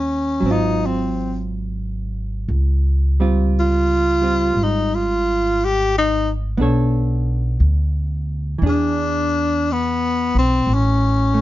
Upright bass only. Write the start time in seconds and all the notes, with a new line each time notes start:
Already playing: D#2
0.42 G#1
2.49 C#2
4.54 G#1
6.57 B1
7.60 D2
8.62 E2
10.35 B1
10.67 A1